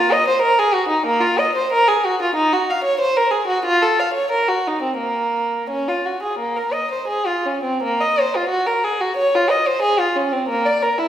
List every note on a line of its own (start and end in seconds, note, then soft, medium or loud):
0.00 0.11 F4 medium
0.12 0.28 D#5 medium
0.28 0.44 C5 medium
0.42 0.58 A#4 medium
0.59 0.75 G#4 medium
0.74 0.91 F#4 medium
0.89 1.06 D#4 medium
1.06 1.22 A#3 medium
1.21 1.38 F4 medium
1.39 1.55 D#5 medium
1.56 1.71 C5 medium
1.73 1.88 A#4 medium
1.88 2.03 G#4 medium
2.05 2.20 F#4 medium
2.22 2.36 F4 medium
2.36 2.51 D#4 medium
2.53 2.68 F#4 medium
2.70 2.84 F5 medium
2.84 2.99 C#5 medium
3.01 3.15 C5 medium
3.17 3.31 A#4 medium
3.31 3.47 G#4 medium
3.48 3.63 F#4 medium
3.66 3.80 F4 medium
3.82 3.97 A4 medium
4.00 4.14 F5 soft
4.14 4.30 C#5 medium
4.31 4.47 A#4 medium
4.49 4.65 F#4 soft
4.68 4.83 D#4 soft
4.83 4.99 C4 soft
4.98 5.68 A#3 soft
5.70 5.87 C#4 medium
5.88 6.05 F4 soft
6.06 6.23 F#4 soft
6.23 6.39 G#4 soft
6.39 6.56 A#3 soft
6.57 6.74 A#4 soft
6.73 6.90 D#5 soft
6.91 7.08 C5 soft
7.08 7.25 G#4 soft
7.27 7.45 F4 soft
7.46 7.65 C#4 soft
7.64 7.82 C4 soft
7.83 8.01 A#3 medium
8.01 8.18 D#5 medium
8.21 8.36 C5 soft
8.36 8.52 F4 soft
8.49 8.67 F#4 medium
8.67 8.84 A#4 soft
8.84 9.01 G#4 soft
9.01 9.17 F#4 medium
9.17 9.33 C#5 medium
9.35 9.50 F4 medium
9.50 9.66 D#5 soft
9.67 9.83 C5 medium
9.82 9.98 G#4 medium
9.99 10.15 F4 soft
10.16 10.31 C#4 medium
10.32 10.48 C4 soft
10.49 10.64 A#3 medium
10.66 10.80 D5 medium
10.83 10.97 A#4 soft
10.99 11.08 E4 soft